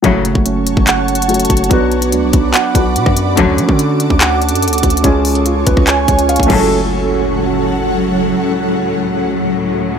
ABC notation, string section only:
X:1
M:4/4
L:1/8
Q:1/4=144
K:F#m
V:1 name="String section" clef=bass
[A,,C,F,] z6 z | z8 | [F,,D,F,] z6 z | z6 z [C,,A,,F,]- |
[C,,A,,F,]8- | [C,,A,,F,]8 |]